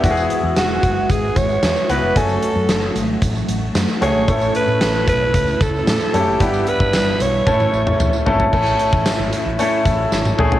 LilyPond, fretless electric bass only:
\new Staff \with { instrumentName = "Fretless electric bass" } { \clef bass \time 4/4 \key a \lydian \tempo 4 = 113 e,,8 r16 e,16 e,,8 fis,,8 gis,,8 gis,,8 e,16 r16 cis,16 eis,,16 | fis,,8 r16 fis,16 fis,,8 gis,,8 a,,8 a,,8 fis,16 r16 cis,16 gis,,16 | a,,8 r16 a,16 a,,8 b,,8 cis,8 cis,8 a,16 r16 fis,16 fis,,16 | g,,8 r16 g,16 g,,8 b,,8 a,8 a,,8 e,16 r16 gis,,8 |
a,,8 r16 a,,16 r16 gis,,16 r16 a,,16 r8 a,,8 gis,,8 ais,,8 | }